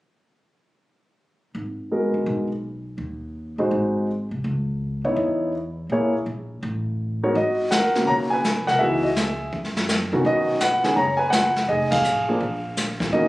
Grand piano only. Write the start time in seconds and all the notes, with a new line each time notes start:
1.92 G#3 B3 F#4 A#4
3.59 G#3 D#4 F#4 C5
5.04 B3 D#4 E4 C#5
5.92 A#3 E4 G#4 C#5
7.23 G#2 B3 F#4 A#4 C#5
7.36 F#4 D#5
7.71 A#4 F#5
7.95 C#3 A#3 B3 F#4
8.07 C#5 A#5
8.30 B4 G#5
8.67 A#4 F#5
8.79 E3 B3 D#4 F#4 G#4 E5
9.04 F#4 D#5
9.17 G#4 E5
10.13 D#3 B3 C#4 F#4
10.26 F#4 D#5
10.61 B4 F#5
10.84 D#3 B3 C#4 G#4
10.96 C#5 A#5
11.17 B4 G#5
11.30 B4 F#5
11.68 G#4 D#5
11.91 G#4 F5
12.29 F3 A#3 D4 G#4
13.13 D#3 A#3 C#4 F#4 D#5